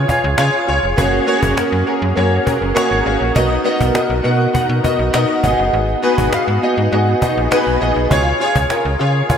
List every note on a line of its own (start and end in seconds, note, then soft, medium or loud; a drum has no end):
0.00 0.08 F4 loud
0.00 0.08 G#4 loud
0.00 1.00 B4 loud
0.00 0.09 C#5 loud
0.08 0.27 F4 medium
0.08 0.28 G#4 medium
0.08 0.28 C#5 medium
0.08 cajon bass loud
0.23 0.35 C#2 loud
0.23 cajon slap soft
0.38 0.50 C#3 loud
0.38 0.57 F4 loud
0.38 0.57 G#4 loud
0.38 0.58 C#5 loud
0.38 cajon slap loud
0.53 cajon slap soft
0.67 0.80 C#2 medium
0.67 0.87 F4 medium
0.67 0.87 G#4 medium
0.67 0.87 C#5 loud
0.67 cajon slap soft
0.83 0.94 F1 medium
0.83 cajon slap soft
0.97 1.20 F#1 loud
0.97 1.16 A#3 loud
0.97 1.16 C#4 medium
0.97 1.16 F#4 loud
0.97 1.17 G#4 loud
0.97 1.17 C#5 loud
0.97 cajon bass loud
1.27 1.46 A#3 loud
1.27 1.46 C#4 loud
1.27 1.46 F#4 loud
1.27 1.47 G#4 medium
1.27 1.47 C#5 loud
1.27 cajon slap soft
1.43 1.54 F#1 loud
1.43 cajon bass loud
1.56 1.64 F#2 soft
1.56 1.75 A#3 medium
1.56 1.76 C#4 medium
1.56 1.76 F#4 medium
1.56 1.76 G#4 medium
1.56 1.76 A#4 loud
1.56 cajon slap loud
1.72 1.84 F#2 loud
1.72 cajon slap soft
1.86 2.05 A#3 medium
1.86 2.06 C#4 medium
1.86 2.06 F#4 medium
1.86 2.06 G#4 medium
1.86 2.06 A#4 loud
1.86 cajon slap medium
2.02 2.13 F#2 loud
2.02 cajon slap soft
2.16 2.39 F#2 loud
2.16 2.35 A#3 medium
2.16 2.35 C#4 medium
2.16 2.35 F#4 medium
2.16 2.35 G#4 medium
2.16 2.36 C#5 loud
2.16 cajon slap medium
2.32 cajon slap soft
2.45 2.65 A#3 medium
2.45 2.65 C#4 medium
2.45 2.65 F#4 medium
2.45 2.65 G#4 medium
2.45 2.65 A#4 loud
2.45 cajon bass loud
2.62 2.73 F#1 loud
2.62 cajon slap soft
2.75 2.94 A#3 loud
2.75 2.94 C#4 loud
2.75 2.95 F#4 loud
2.75 2.95 G#4 loud
2.75 2.95 C#5 loud
2.75 3.03 A#5 medium
2.75 cajon slap loud
2.91 3.02 G#1 loud
2.91 cajon slap soft
3.05 3.17 G#1 medium
3.05 3.24 A#3 medium
3.05 3.24 C#4 medium
3.05 3.25 F#4 medium
3.05 3.25 G#4 medium
3.05 3.25 C#5 loud
3.05 3.33 F5 medium
3.21 3.32 A#1 medium
3.21 cajon slap soft
3.35 3.58 B1 loud
3.35 3.54 B3 loud
3.35 3.54 D#4 loud
3.35 3.54 F#4 loud
3.35 3.54 A#4 medium
3.35 3.55 D#5 loud
3.35 cajon bass loud
3.64 3.84 B3 loud
3.64 3.84 D#4 loud
3.64 3.84 F#4 loud
3.64 3.84 A#4 loud
3.64 3.84 D#5 loud
3.64 cajon slap medium
3.80 3.92 B1 loud
3.80 cajon bass loud
3.93 4.13 B3 medium
3.93 4.13 D#4 medium
3.93 4.13 F#4 medium
3.93 4.14 A#4 medium
3.93 4.14 D#5 loud
3.93 cajon slap loud
4.10 4.21 B1 loud
4.10 cajon slap soft
4.23 4.47 B2 medium
4.23 4.43 B3 medium
4.23 4.43 D#4 medium
4.23 4.43 F#4 medium
4.23 4.43 A#4 medium
4.23 4.43 F#5 loud
4.23 cajon slap medium
4.40 cajon slap soft
4.53 4.61 B2 medium
4.53 4.73 B3 medium
4.53 4.73 D#4 medium
4.53 4.73 F#4 medium
4.53 4.73 A#4 medium
4.53 4.73 F#5 medium
4.53 cajon bass loud
4.69 4.81 B2 loud
4.69 cajon slap soft
4.83 5.02 B3 medium
4.83 5.03 D#4 medium
4.83 5.03 F#4 medium
4.83 5.03 A#4 medium
4.83 5.03 D#5 loud
4.83 cajon bass loud
4.99 5.10 B1 medium
4.99 cajon slap soft
5.13 5.25 B2 loud
5.13 5.32 B3 loud
5.13 5.32 D#4 loud
5.13 5.33 F#4 loud
5.13 5.33 A#4 loud
5.13 5.33 D#5 loud
5.13 cajon slap loud
5.29 cajon slap soft
5.43 5.55 G#1 medium
5.43 5.91 B3 loud
5.43 5.91 D#4 medium
5.43 5.91 F#4 medium
5.43 5.91 G#4 medium
5.43 5.91 D#5 loud
5.43 cajon bass loud
5.58 5.70 F#1 medium
5.58 cajon slap soft
5.73 5.96 G#1 loud
5.73 cajon slap soft
5.88 cajon slap soft
6.02 6.21 B3 loud
6.02 6.22 D#4 loud
6.02 6.22 F#4 loud
6.02 6.22 G#4 loud
6.02 6.22 B4 loud
6.02 cajon slap medium
6.18 6.29 G#1 loud
6.18 cajon bass loud
6.32 6.39 G#2 soft
6.32 6.51 B3 medium
6.32 6.51 D#4 medium
6.32 6.51 F#4 medium
6.32 6.52 G#4 medium
6.32 6.52 F5 loud
6.32 cajon slap loud
6.48 6.59 G#2 loud
6.48 cajon slap soft
6.62 6.81 B3 medium
6.62 6.81 D#4 medium
6.62 6.81 F#4 medium
6.62 6.81 G#4 medium
6.62 6.82 D#5 loud
6.62 cajon slap medium
6.78 6.89 G#2 medium
6.78 cajon slap soft
6.91 7.15 G#2 loud
6.91 7.10 B3 medium
6.91 7.11 D#4 medium
6.91 7.11 F#4 medium
6.91 7.11 G#4 medium
6.91 7.11 D#5 medium
6.91 cajon slap medium
7.07 cajon slap soft
7.21 7.40 B3 medium
7.21 7.40 D#4 medium
7.21 7.40 F#4 medium
7.21 7.41 G#4 medium
7.21 7.41 D#5 loud
7.21 cajon bass loud
7.37 7.48 A#1 loud
7.51 7.70 B3 loud
7.51 7.70 D#4 loud
7.51 7.70 F#4 loud
7.51 7.70 G#4 loud
7.51 7.70 B4 loud
7.51 cajon slap loud
7.67 7.78 B1 medium
7.67 cajon slap soft
7.81 7.93 A#1 loud
7.81 8.00 B3 loud
7.81 8.00 D#4 medium
7.81 8.00 F#4 medium
7.81 8.00 G#4 medium
7.81 8.00 D#5 loud
7.81 cajon slap soft
7.96 8.07 B1 medium
7.96 cajon slap soft
8.10 8.33 C#2 loud
8.10 8.29 F4 loud
8.10 8.30 G#4 loud
8.10 8.30 C#5 loud
8.10 cajon bass loud
8.40 8.59 F4 loud
8.40 8.59 G#4 loud
8.40 8.60 C#5 loud
8.40 cajon slap medium
8.56 8.67 C#2 loud
8.56 cajon bass loud
8.70 8.89 F4 medium
8.70 8.89 G#4 medium
8.70 8.90 A#4 loud
8.70 cajon slap loud
8.85 8.96 C#2 loud
8.85 cajon slap soft
8.99 9.23 C#3 loud
8.99 9.18 F4 medium
8.99 9.19 G#4 medium
8.99 9.19 C#5 loud
8.99 cajon slap medium
9.15 cajon slap soft
9.29 9.36 C#3 soft
9.29 9.38 F4 medium
9.29 9.38 G#4 medium
9.29 9.38 C#5 medium
9.29 cajon bass loud